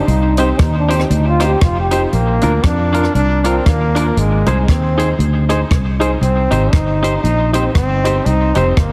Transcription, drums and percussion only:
0.08 closed hi-hat medium
0.37 closed hi-hat medium
0.59 kick loud
0.59 cross-stick loud
0.59 closed hi-hat medium
0.90 closed hi-hat medium
1.00 cross-stick medium
1.11 closed hi-hat medium
1.40 cross-stick medium
1.40 closed hi-hat loud
1.61 kick loud
1.61 cross-stick loud
1.61 closed hi-hat medium
1.91 closed hi-hat loud
2.13 closed hi-hat medium
2.41 closed hi-hat medium
2.64 kick loud
2.64 cross-stick loud
2.64 closed hi-hat medium
2.94 closed hi-hat medium
3.04 cross-stick medium
3.15 closed hi-hat medium
3.44 cross-stick medium
3.44 closed hi-hat loud
3.66 kick loud
3.66 cross-stick loud
3.66 closed hi-hat medium
3.96 closed hi-hat medium
4.17 closed hi-hat medium
4.46 closed hi-hat medium
4.68 kick loud
4.68 cross-stick loud
4.68 closed hi-hat medium
4.99 closed hi-hat medium
5.20 closed hi-hat medium
5.50 cross-stick medium
5.50 closed hi-hat medium
5.71 kick loud
5.71 cross-stick loud
5.71 closed hi-hat medium
6.01 closed hi-hat loud
6.22 closed hi-hat medium
6.51 closed hi-hat medium
6.73 kick loud
6.73 cross-stick loud
6.73 closed hi-hat medium
7.04 closed hi-hat medium
7.25 closed hi-hat medium
7.54 closed hi-hat loud
7.75 kick medium
7.75 cross-stick loud
7.75 closed hi-hat medium
8.05 closed hi-hat loud
8.26 closed hi-hat medium
8.55 closed hi-hat medium
8.77 kick loud
8.77 cross-stick loud
8.77 closed hi-hat medium

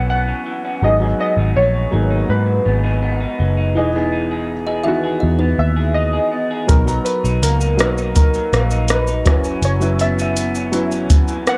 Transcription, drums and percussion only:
6.69 kick loud
6.69 closed hi-hat medium
6.69 shaker medium
6.88 shaker soft
7.06 closed hi-hat soft
7.06 shaker soft
7.25 shaker medium
7.43 closed hi-hat medium
7.43 shaker medium
7.61 shaker medium
7.79 cross-stick medium
7.79 closed hi-hat soft
7.79 shaker soft
7.98 shaker soft
8.16 kick medium
8.16 closed hi-hat medium
8.16 shaker medium
8.34 shaker soft
8.53 cross-stick medium
8.53 closed hi-hat soft
8.53 shaker soft
8.71 shaker medium
8.88 cross-stick medium
8.88 closed hi-hat medium
8.88 shaker medium
9.07 shaker soft
9.26 kick loud
9.26 cross-stick medium
9.26 closed hi-hat soft
9.26 shaker soft
9.44 shaker medium
9.63 closed hi-hat medium
9.63 shaker medium
9.81 shaker soft
9.99 closed hi-hat soft
9.99 shaker soft
10.19 shaker medium
10.37 closed hi-hat medium
10.37 shaker medium
10.55 shaker medium
10.73 closed hi-hat medium
10.73 shaker soft
10.92 shaker soft
11.10 kick medium
11.10 closed hi-hat medium
11.10 shaker medium
11.28 shaker soft
11.47 cross-stick medium
11.47 closed hi-hat soft
11.47 shaker soft

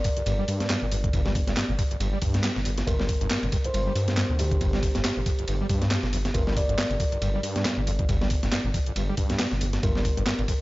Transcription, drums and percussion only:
0.04 kick loud
0.04 open hi-hat medium
0.04 ride medium
0.17 closed hi-hat soft
0.26 closed hi-hat soft
0.26 ride medium
0.48 open hi-hat medium
0.48 ride medium
0.60 snare soft
0.60 closed hi-hat soft
0.70 snare loud
0.70 clap loud
0.70 closed hi-hat soft
0.70 ride medium
0.92 open hi-hat medium
0.92 ride medium
1.04 kick loud
1.04 closed hi-hat soft
1.13 kick loud
1.13 closed hi-hat soft
1.13 ride medium
1.26 snare medium
1.35 kick loud
1.35 open hi-hat medium
1.35 ride medium
1.47 snare soft
1.47 closed hi-hat soft
1.57 snare loud
1.57 clap loud
1.57 closed hi-hat soft
1.57 ride medium
1.79 kick loud
1.79 open hi-hat medium
1.79 ride medium
1.91 closed hi-hat soft
2.00 closed hi-hat soft
2.00 ride medium
2.22 kick loud
2.22 open hi-hat medium
2.22 ride medium
2.34 snare soft
2.34 closed hi-hat soft
2.44 snare loud
2.44 clap loud
2.44 closed hi-hat soft
2.44 ride medium
2.56 snare soft
2.65 open hi-hat medium
2.65 ride medium
2.78 snare medium
2.78 closed hi-hat soft
2.87 kick loud
2.87 closed hi-hat soft
2.87 ride medium
3.00 snare soft
3.09 kick medium
3.09 open hi-hat medium
3.09 ride medium
3.21 closed hi-hat soft
3.31 snare loud
3.31 clap loud
3.31 closed hi-hat soft
3.31 ride medium
3.43 ride soft
3.52 kick loud
3.52 open hi-hat medium
3.52 ride medium
3.64 closed hi-hat soft
3.74 closed hi-hat soft
3.74 ride medium
3.96 open hi-hat medium
3.96 ride medium
4.08 snare soft
4.08 closed hi-hat soft
4.17 snare loud
4.17 clap loud
4.17 closed hi-hat soft
4.17 ride medium
4.39 open hi-hat medium
4.39 ride medium
4.51 kick loud
4.51 closed hi-hat soft
4.61 kick loud
4.61 closed hi-hat soft
4.61 ride medium
4.73 snare medium
4.83 kick medium
4.83 open hi-hat medium
4.83 ride medium
4.95 snare medium
4.95 closed hi-hat soft
5.05 snare loud
5.05 clap loud
5.05 closed hi-hat soft
5.05 ride medium
5.26 kick loud
5.26 open hi-hat medium
5.26 ride medium
5.39 closed hi-hat soft
5.48 closed hi-hat soft
5.48 ride medium
5.69 kick medium
5.69 open hi-hat medium
5.69 ride medium
5.82 snare soft
5.82 closed hi-hat soft
5.91 snare loud
5.91 clap loud
5.91 closed hi-hat soft
5.91 ride medium
6.03 snare soft
6.13 open hi-hat medium
6.13 ride medium
6.25 snare medium
6.25 closed hi-hat soft
6.34 kick loud
6.34 closed hi-hat soft
6.34 ride medium
6.47 snare soft
6.57 kick loud
6.57 open hi-hat medium
6.57 ride medium
6.69 closed hi-hat soft
6.78 snare loud
6.78 clap loud
6.78 closed hi-hat soft
6.78 ride medium
6.91 ride soft
7.00 kick loud
7.00 open hi-hat medium
7.00 ride medium
7.12 closed hi-hat soft
7.22 closed hi-hat soft
7.22 ride medium
7.43 open hi-hat medium
7.43 ride medium
7.56 snare soft
7.56 closed hi-hat soft
7.65 snare loud
7.65 clap loud
7.65 closed hi-hat soft
7.65 ride medium
7.87 open hi-hat medium
7.87 ride medium
7.99 kick loud
7.99 closed hi-hat soft
8.09 kick loud
8.09 closed hi-hat soft
8.09 ride medium
8.21 snare medium
8.30 kick loud
8.30 open hi-hat medium
8.30 ride medium
8.43 snare soft
8.43 closed hi-hat soft
8.52 snare loud
8.52 clap loud
8.52 closed hi-hat soft
8.52 ride medium
8.74 kick loud
8.74 open hi-hat medium
8.74 ride medium
8.86 closed hi-hat soft
8.96 closed hi-hat soft
8.96 ride loud
9.17 kick loud
9.17 open hi-hat medium
9.17 ride medium
9.30 snare soft
9.30 closed hi-hat soft
9.39 snare loud
9.39 clap loud
9.39 closed hi-hat soft
9.39 ride medium
9.51 snare soft
9.61 open hi-hat medium
9.61 ride medium
9.73 snare medium
9.73 closed hi-hat soft
9.83 kick loud
9.83 closed hi-hat soft
9.83 ride medium
9.96 snare soft
10.05 kick loud
10.05 open hi-hat medium
10.05 ride medium
10.17 closed hi-hat soft
10.26 snare loud
10.26 clap loud
10.26 closed hi-hat soft
10.26 ride medium
10.39 ride soft
10.48 kick loud
10.48 open hi-hat medium
10.48 ride medium

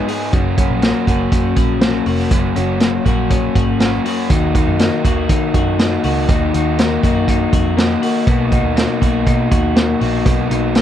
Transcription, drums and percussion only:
0.08 open hi-hat medium
0.33 kick loud
0.33 closed hi-hat medium
0.58 kick medium
0.58 closed hi-hat medium
0.82 snare medium
0.82 closed hi-hat medium
1.07 kick medium
1.07 closed hi-hat medium
1.32 kick medium
1.32 closed hi-hat medium
1.56 kick medium
1.56 closed hi-hat medium
1.81 snare loud
1.81 closed hi-hat medium
2.06 open hi-hat medium
2.31 kick loud
2.31 closed hi-hat medium
2.56 closed hi-hat medium
2.80 snare medium
2.80 closed hi-hat medium
3.06 kick medium
3.06 closed hi-hat medium
3.31 kick medium
3.31 closed hi-hat medium
3.56 kick medium
3.56 closed hi-hat medium
3.80 snare loud
3.80 closed hi-hat medium
4.05 open hi-hat medium
4.30 kick loud
4.30 closed hi-hat medium
4.55 kick medium
4.55 closed hi-hat medium
4.79 snare medium
4.79 closed hi-hat medium
5.05 kick medium
5.05 closed hi-hat medium
5.29 kick medium
5.29 closed hi-hat medium
5.54 kick medium
5.54 closed hi-hat medium
5.79 snare loud
5.79 closed hi-hat medium
6.03 open hi-hat medium
6.29 kick loud
6.29 closed hi-hat medium
6.54 closed hi-hat medium
6.78 snare medium
6.78 closed hi-hat medium
7.03 kick medium
7.03 closed hi-hat medium
7.28 kick medium
7.28 closed hi-hat medium
7.53 kick medium
7.53 closed hi-hat medium
7.78 snare loud
7.78 closed hi-hat medium
8.03 open hi-hat medium
8.27 kick medium
8.27 closed hi-hat medium
8.52 kick medium
8.52 closed hi-hat medium
8.77 snare loud
8.77 closed hi-hat medium
9.02 kick medium
9.02 closed hi-hat medium
9.27 kick medium
9.27 closed hi-hat medium
9.52 kick medium
9.52 closed hi-hat medium
9.76 snare loud
9.76 closed hi-hat medium
10.01 open hi-hat medium
10.26 kick loud
10.26 closed hi-hat medium
10.51 closed hi-hat medium
10.75 snare loud
10.75 closed hi-hat medium

